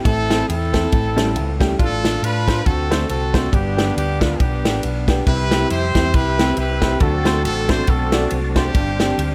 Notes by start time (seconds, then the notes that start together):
0.04 A1 A2 C4 E4 A4, kick, ride
0.30 C4 E4 A4, snare, ride
0.48 E2 C4 E4 A4, ride
0.73 C4 E4 A4, kick, snare, ride
0.92 A1 A2, kick, ride
1.16 G3 A3 C#4 E4 A4, snare, ride
1.36 C#2, ride
1.60 G3 A3 C#4 E4 G4, kick, snare, ride
1.78 A1 A2 D4 F4 A4, kick, ride
2.04 D4 F4 A4, snare, ride
2.22 A2 D4 F4 B4, ride
2.47 D4 F4 C5, kick, snare, ride
2.65 D2 D3 C4 F#4 A4, kick, ride
2.90 A3 C4 D4 F#4 C5, snare, ride
3.08 C2 C4 F#4 A4, ride
3.34 A3 C4 D4 F#4 C5, kick, snare, ride
3.51 G1 G2 B3 D4 G4, kick, ride
3.77 B3 D4 G4, snare, ride
3.95 D2 G4, ride
4.19 B3 D4 F4 B4, kick, snare, ride
4.38 B1 B3 D4 G4, kick, ride
4.65 A1 B3 D4 G4, snare, ride
4.83 B1, ride
5.08 B3 D4 G4, kick, snare, ride
5.26 C2 C3 G3 C4 E4 G4 B4, kick, ride
5.51 C4 E4 G4, snare, ride
5.70 F2 E4 G4 C5, ride
5.95 E2 C4 E4 G4, kick, snare, ride
6.14 C2 E4 G4 B4, kick, ride
6.39 C4 E4 G4, snare, ride
6.57 C2 E4 G4 B4, ride
6.82 C4 E4 G4, kick, snare, ride
7.00 D2 D3 F3 A3 C4 D4 F#4 A4, kick, ride
7.07 F#3
7.25 A3 C4 D4 F#4 C5, snare, ride
7.44 A1 A4, ride
7.69 A3 C4 D4 F#4 C5, kick, snare, ride
7.87 B1 C4 F#4 A4, kick, ride
8.12 A3 C4 D4 F#4 D5, snare, ride
8.30 C2, ride
8.55 A3 C4 D4 F#4 G4 C5, kick, snare, ride
8.74 G1 G2 B3 D4 G4, kick, ride
8.79 C4
9.00 C4 D4 G4, snare, ride
9.18 D2, ride